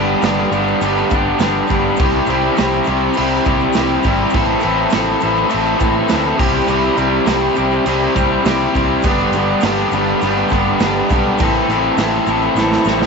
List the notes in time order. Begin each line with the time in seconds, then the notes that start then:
Already playing: G1 G2 D3 G3 B3 D4 G4
0.21 G1 G2 D3 G3 B3, snare, crash, shaker
0.25 D4 G4
0.50 G1 G2 D3 G3 B3 D4, crash, shaker
0.54 G4
0.68 shaker
0.81 G1 G2 D3 G3 B3, crash, shaker
0.85 D4 G4
0.97 shaker
1.10 G1 G2 D3 G3 B3, kick, crash, shaker
1.14 D4 G4
1.39 G1 G2 D3 G3 B3 D4, snare, crash, shaker
1.43 G4
1.67 G1 G2 D3 G3 B3 D4, kick, crash, shaker
1.72 G4
1.96 C2 C3 G3 C4 E4, kick, crash, shaker
2.02 G4
2.12 shaker
2.26 C2 C3 G3 C4 E4, crash, shaker
2.31 G4
2.56 C2 C3 G3 C4 E4, snare, crash, shaker
2.60 G4
2.71 shaker
2.84 C2 C3 G3 C4, crash, shaker
2.89 E4 G4
3.14 C3, crash, shaker
3.18 C2 G3 C4 E4 G4
3.45 C2 C3 G3 C4 E4 G4, kick, crash, shaker
3.60 shaker
3.73 C3 G3 C4, snare, crash, shaker
3.77 C2 E4 G4
3.87 shaker
4.03 G#1 C3 G3 C4, kick, crash, shaker
4.07 E4 G4
4.16 shaker
4.30 A2, shaker
4.34 A1 E3 C4 E4 A4, kick, crash
4.45 shaker
4.60 A2 E3 C4, crash, shaker
4.64 A1 E4 A4
4.90 A1 A2 E3 C4 E4, snare, crash, shaker
4.95 A4
5.20 A1 A2 E3 C4 E4 A4, crash, shaker
5.36 shaker
5.49 A2 E3 C4 E4 A4, crash, shaker
5.54 A1
5.66 shaker
5.78 A1 A2 E3 C4 E4 A4, kick, crash, shaker
6.07 A2 E3 C4 E4 A4, snare, crash, shaker
6.12 D2
6.37 C2 C3 G3 C4 E4 G4, kick, crash, shaker
6.67 C2 C3 G3 C4 E4 G4, crash, shaker
6.83 shaker
6.96 C2 C3 G3 C4 E4 G4, crash, shaker
7.25 C2 C3 G3 C4 E4 G4, snare, crash, shaker
7.55 C2 C3 G3 C4 E4 G4, crash, shaker
7.71 shaker
7.85 C2 C3 G3 C4 E4 G4, crash, shaker
8.02 shaker
8.14 C2 C3 G3 C4 E4 G4, kick, crash, shaker
8.44 C2 C3 G3 C4 E4 G4, snare, crash, shaker
8.74 C2 C3 G3 C4 E4 G4, kick, crash, shaker
9.02 G1 G2 D3 G3 B3, kick, crash, shaker
9.08 D4 G4
9.19 shaker
9.32 G1 G2 D3, crash, shaker
9.37 G3 B3 D4 G4
9.61 G1 G2 D3, snare, crash, shaker
9.65 G3 B3 D4 G4
9.91 G1 G2 D3 G3 B3, crash, shaker
9.95 D4 G4
10.07 shaker
10.21 G1 G2 D3 G3, crash, shaker
10.25 B3 D4 G4
10.37 shaker
10.49 G1 G2 D3, kick, crash, shaker
10.53 G3 B3 D4 G4
10.79 G1 G2 D3 G3 B3 D4, snare, crash, shaker
10.84 G4
11.09 B1 G2 D3 G3 B3 D4, kick, crash, shaker
11.14 G4
11.38 A1 A2 E3 C4, kick, crash, shaker
11.43 E4 A4
11.55 shaker
11.68 A1 A2 E3 C4, crash, shaker
11.72 E4 A4
11.97 A1 A2 E3 C4 E4 A4, snare, crash, shaker
12.12 shaker
12.26 A1 A2 E3 C4 E4 A4, crash, shaker
12.41 shaker
12.55 A1 A2 E3 C4 E4, snare, shaker
12.60 A4
12.72 snare, shaker
12.85 A1 A2 E3 C4, snare, shaker
12.89 E4 A4
13.02 snare